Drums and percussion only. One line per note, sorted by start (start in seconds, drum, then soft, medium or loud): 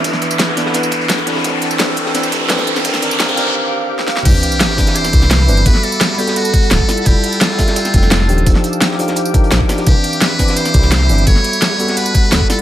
0.04 kick loud
0.04 closed hi-hat medium
0.04 tambourine medium
0.13 snare soft
0.13 closed hi-hat soft
0.22 closed hi-hat medium
0.31 tambourine medium
0.39 snare loud
0.39 closed hi-hat medium
0.39 tambourine medium
0.48 snare medium
0.57 snare soft
0.57 closed hi-hat medium
0.66 snare medium
0.74 snare soft
0.74 closed hi-hat medium
0.74 tambourine medium
0.83 tambourine medium
0.91 kick loud
0.91 closed hi-hat medium
0.91 tambourine soft
1.01 closed hi-hat soft
1.09 snare loud
1.09 closed hi-hat medium
1.09 tambourine soft
1.18 kick medium
1.18 snare soft
1.27 snare soft
1.27 closed hi-hat medium
1.27 open hi-hat medium
1.35 snare soft
1.44 kick loud
1.44 closed hi-hat loud
1.44 closed hi-hat medium
1.44 tambourine medium
1.62 closed hi-hat medium
1.71 tambourine medium
1.79 snare loud
1.79 closed hi-hat loud
1.79 closed hi-hat medium
1.79 tambourine medium
1.89 snare soft
1.96 kick medium
1.96 closed hi-hat medium
2.06 snare medium
2.15 snare soft
2.15 closed hi-hat loud
2.15 closed hi-hat medium
2.15 tambourine medium
2.23 closed hi-hat soft
2.23 tambourine medium
2.32 kick loud
2.32 closed hi-hat medium
2.32 tambourine soft
2.49 snare loud
2.49 closed hi-hat medium
2.49 tambourine medium
2.58 snare soft
2.67 closed hi-hat medium
2.76 snare soft
2.85 kick loud
2.85 closed hi-hat loud
2.85 tambourine medium
2.94 snare soft
2.94 snare medium
3.02 closed hi-hat medium
3.11 tambourine medium
3.20 snare loud
3.20 closed hi-hat medium
3.20 tambourine medium
3.28 snare medium
3.28 tambourine soft
3.37 snare soft
3.37 closed hi-hat medium
3.46 snare medium
3.99 snare medium
4.08 snare medium
4.17 snare medium
4.25 kick loud
4.25 closed hi-hat medium
4.25 closed hi-hat loud
4.25 crash loud
4.25 tambourine soft
4.43 closed hi-hat medium
4.52 tambourine medium
4.60 snare loud
4.60 closed hi-hat medium
4.60 tambourine medium
4.70 snare soft
4.78 kick medium
4.78 snare soft
4.78 closed hi-hat medium
4.78 open hi-hat medium
4.87 snare medium
4.87 closed hi-hat soft
4.95 closed hi-hat medium
4.95 closed hi-hat loud
4.95 tambourine medium
5.04 snare soft
5.04 closed hi-hat soft
5.04 tambourine medium
5.13 kick loud
5.13 closed hi-hat medium
5.13 tambourine soft
5.22 snare soft
5.31 snare loud
5.31 closed hi-hat medium
5.31 closed hi-hat loud
5.31 tambourine soft
5.40 snare soft
5.48 closed hi-hat medium
5.48 open hi-hat medium
5.48 tambourine soft
5.57 closed hi-hat soft
5.66 kick loud
5.66 closed hi-hat medium
5.66 closed hi-hat loud
5.66 tambourine soft
5.75 snare soft
5.83 closed hi-hat medium
5.92 tambourine medium
6.00 snare loud
6.00 closed hi-hat loud
6.00 closed hi-hat medium
6.00 tambourine soft
6.10 snare medium
6.18 closed hi-hat medium
6.18 open hi-hat medium
6.27 snare medium
6.27 closed hi-hat soft
6.36 closed hi-hat medium
6.36 tambourine soft
6.45 tambourine medium
6.54 kick loud
6.54 closed hi-hat medium
6.54 tambourine soft
6.63 closed hi-hat soft
6.71 snare loud
6.71 closed hi-hat medium
6.71 tambourine soft
6.80 kick medium
6.89 snare medium
6.89 closed hi-hat medium
6.89 open hi-hat medium
6.89 tambourine soft
6.97 closed hi-hat soft
7.05 kick loud
7.05 closed hi-hat loud
7.05 closed hi-hat medium
7.05 tambourine soft
7.24 closed hi-hat medium
7.32 tambourine medium
7.41 snare loud
7.41 closed hi-hat medium
7.41 tambourine soft
7.50 snare soft
7.59 kick medium
7.59 snare soft
7.59 closed hi-hat medium
7.59 open hi-hat medium
7.68 snare medium
7.68 closed hi-hat soft
7.76 closed hi-hat loud
7.76 closed hi-hat medium
7.76 tambourine soft
7.85 snare soft
7.85 closed hi-hat soft
7.85 tambourine medium
7.94 kick loud
7.94 closed hi-hat medium
7.94 tambourine soft
8.03 snare soft
8.11 snare loud
8.11 closed hi-hat medium
8.11 tambourine soft
8.20 snare soft
8.29 closed hi-hat medium
8.29 open hi-hat medium
8.29 tambourine soft
8.38 closed hi-hat soft
8.46 kick loud
8.46 closed hi-hat medium
8.46 tambourine soft
8.55 snare soft
8.55 closed hi-hat soft
8.64 closed hi-hat medium
8.73 tambourine medium
8.81 snare loud
8.81 closed hi-hat medium
8.81 closed hi-hat loud
8.81 tambourine soft
8.91 snare medium
8.99 closed hi-hat medium
8.99 open hi-hat medium
9.08 snare medium
9.08 closed hi-hat soft
9.16 closed hi-hat medium
9.16 tambourine soft
9.25 tambourine medium
9.34 kick loud
9.34 closed hi-hat medium
9.34 tambourine soft
9.44 closed hi-hat soft
9.51 snare loud
9.51 closed hi-hat medium
9.51 tambourine soft
9.61 kick medium
9.69 snare soft
9.69 open hi-hat medium
9.69 tambourine soft
9.78 snare soft
9.78 closed hi-hat soft
9.87 kick loud
9.87 closed hi-hat medium
9.87 closed hi-hat loud
9.87 tambourine soft
10.04 closed hi-hat medium
10.13 tambourine medium
10.21 snare loud
10.21 closed hi-hat medium
10.21 tambourine soft
10.31 snare soft
10.39 kick medium
10.39 snare soft
10.39 closed hi-hat medium
10.39 open hi-hat medium
10.48 snare medium
10.48 closed hi-hat soft
10.57 closed hi-hat medium
10.57 tambourine medium
10.65 snare soft
10.65 closed hi-hat soft
10.65 tambourine medium
10.74 kick loud
10.74 closed hi-hat medium
10.74 tambourine soft
10.83 snare soft
10.92 snare loud
10.92 closed hi-hat medium
10.92 tambourine soft
11.01 snare soft
11.09 closed hi-hat medium
11.09 open hi-hat medium
11.09 tambourine soft
11.18 closed hi-hat soft
11.27 kick loud
11.27 closed hi-hat loud
11.27 closed hi-hat medium
11.27 tambourine medium
11.36 snare soft
11.44 closed hi-hat medium
11.53 tambourine medium
11.62 snare loud
11.62 closed hi-hat medium
11.62 tambourine medium
11.71 snare medium
11.79 closed hi-hat medium
11.79 open hi-hat medium
11.88 snare medium
11.88 closed hi-hat soft
11.97 closed hi-hat loud
11.97 closed hi-hat medium
11.97 tambourine medium
12.06 tambourine medium
12.15 kick loud
12.15 closed hi-hat medium
12.15 tambourine soft
12.24 closed hi-hat soft
12.32 snare loud
12.32 closed hi-hat medium
12.32 tambourine medium
12.41 kick medium
12.50 snare soft
12.50 closed hi-hat medium
12.50 open hi-hat medium
12.50 tambourine soft
12.59 closed hi-hat soft